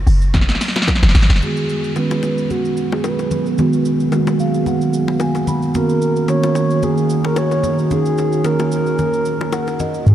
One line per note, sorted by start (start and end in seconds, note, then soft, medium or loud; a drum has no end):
0.07 0.57 F#1 loud
0.07 open hi-hat medium
0.07 shaker medium
0.22 shaker medium
0.34 kick loud
0.34 snare medium
0.34 low conga medium
0.34 shaker medium
0.41 snare medium
0.49 snare medium
0.49 shaker soft
0.55 snare medium
0.61 snare medium
0.61 open hi-hat medium
0.61 shaker medium
0.68 snare medium
0.76 snare medium
0.76 low bongo medium
0.82 snare medium
0.88 kick medium
0.88 snare medium
0.88 high bongo medium
0.88 low bongo soft
0.88 shaker medium
0.95 snare medium
1.03 1.14 F#1 medium
1.03 snare medium
1.03 high bongo medium
1.03 shaker medium
1.09 snare medium
1.15 1.29 G#1 medium
1.15 snare loud
1.15 open hi-hat medium
1.15 low conga medium
1.15 shaker medium
1.23 snare medium
1.30 1.41 F#1 loud
1.30 snare loud
1.30 shaker medium
1.36 snare medium
1.41 1.86 D#3 medium
1.41 5.70 F#3 medium
1.41 1.86 G#3 medium
1.41 5.70 B3 medium
1.41 1.87 B3 medium
1.41 1.87 F#4 medium
1.41 5.70 G#4 medium
1.41 1.93 G#4 loud
1.41 low conga medium
1.41 shaker medium
1.57 shaker medium
1.69 shaker medium
1.84 shaker soft
1.96 2.83 D#3 medium
1.96 2.83 G#3 medium
1.96 2.84 B3 medium
1.96 2.84 C#4 medium
1.96 2.52 B4 loud
1.96 high bongo medium
1.96 shaker medium
2.11 low bongo medium
2.11 shaker medium
2.23 low bongo medium
2.23 shaker medium
2.38 shaker soft
2.50 2.94 F#4 medium
2.50 low conga medium
2.50 shaker medium
2.65 shaker soft
2.77 shaker medium
2.92 3.07 G#4 medium
2.92 low bongo medium
3.04 3.47 B4 medium
3.04 high bongo medium
3.04 low bongo soft
3.04 shaker medium
3.19 high bongo soft
3.19 shaker soft
3.31 low conga medium
3.31 shaker medium
3.46 shaker soft
3.58 4.02 D#3 medium
3.58 4.03 G#3 medium
3.58 4.03 B3 medium
3.58 4.03 F#4 medium
3.58 low conga medium
3.58 shaker medium
3.73 shaker medium
3.85 shaker medium
4.00 shaker soft
4.12 4.99 D#3 medium
4.12 4.99 G#3 medium
4.12 4.20 A#3 medium
4.12 5.00 F#4 medium
4.12 high bongo medium
4.12 shaker medium
4.20 5.03 B3 medium
4.27 low bongo medium
4.27 shaker medium
4.39 4.65 F5 medium
4.39 shaker medium
4.54 shaker medium
4.66 5.17 F#5 medium
4.66 low conga medium
4.66 shaker medium
4.81 shaker soft
4.93 shaker medium
5.08 low bongo medium
5.20 5.46 G#5 medium
5.20 high bongo medium
5.20 low bongo soft
5.20 shaker medium
5.35 high bongo soft
5.35 shaker medium
5.47 5.73 B5 medium
5.47 low conga medium
5.47 shaker medium
5.62 shaker soft
5.74 6.18 D#3 medium
5.74 10.03 D#3 medium
5.74 10.03 A#3 medium
5.74 6.19 A#3 medium
5.74 6.19 C#4 medium
5.74 10.03 F#4 medium
5.74 6.20 F#4 medium
5.74 6.31 A#4 loud
5.74 low conga medium
5.74 shaker medium
5.89 shaker medium
6.02 shaker medium
6.16 shaker soft
6.28 7.15 D#3 medium
6.28 7.16 A#3 medium
6.28 7.16 C#4 medium
6.28 7.16 F#4 medium
6.28 6.85 C#5 loud
6.28 high bongo medium
6.28 shaker medium
6.43 low bongo medium
6.43 shaker medium
6.55 low bongo medium
6.55 shaker medium
6.70 shaker medium
6.83 7.25 G#4 loud
6.83 low conga medium
6.83 shaker medium
6.97 shaker soft
7.09 shaker medium
7.25 7.39 A#4 medium
7.25 low bongo medium
7.36 7.79 C#5 loud
7.36 high bongo medium
7.36 low bongo soft
7.36 shaker medium
7.51 high bongo soft
7.51 shaker soft
7.63 low conga medium
7.63 shaker medium
7.78 shaker soft
7.90 8.35 D#3 medium
7.90 8.35 A#3 medium
7.90 8.35 C#4 medium
7.90 8.36 D#4 medium
7.90 8.48 G#4 loud
7.90 low conga medium
7.90 shaker medium
8.05 shaker medium
8.18 high bongo soft
8.18 shaker medium
8.32 shaker medium
8.44 9.31 D#3 medium
8.44 9.32 A#3 medium
8.44 9.32 C#4 medium
8.44 9.32 G#4 medium
8.44 8.72 A#4 medium
8.44 high bongo medium
8.44 shaker medium
8.59 low bongo medium
8.59 shaker medium
8.71 9.77 A#4 loud
8.71 shaker medium
8.86 shaker soft
8.98 low conga medium
8.98 shaker medium
9.13 shaker soft
9.25 shaker medium
9.41 low bongo medium
9.52 9.78 F#5 medium
9.52 high bongo medium
9.52 low bongo soft
9.52 shaker medium
9.67 high bongo soft
9.67 shaker medium
9.79 10.05 D#5 medium
9.79 low conga medium
9.79 shaker medium
9.94 shaker soft
10.06 10.15 G#2 loud
10.06 10.15 D#3 medium
10.06 10.15 F#3 medium
10.06 10.15 G#3 medium
10.06 10.15 B3 medium
10.06 10.15 F#4 medium
10.06 10.15 G#4 medium
10.06 10.15 G#4 loud
10.06 low conga medium
10.06 shaker medium